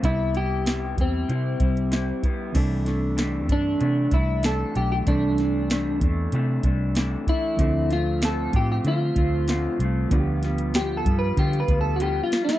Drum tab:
CC |----------------|x---------------|----------------|----------------|
HH |x-x-x-x-x-xxx-x-|x-x-x-x-x-x-x-x-|x-x-x-x-x-x-x-x-|x-x-x-x-x-x-x-x-|
SD |----o-------o---|--o-o-------o---|--o-o-------o---|--o-o-------o---|
BD |o-----o---o---o-|o-----o---o-----|o-----o---o---o-|o-----o---o-----|

CC |----------------|
HH |x-xxx-x-xxx-x-x-|
SD |--o-o---------oo|
BD |o-----o-o-o-----|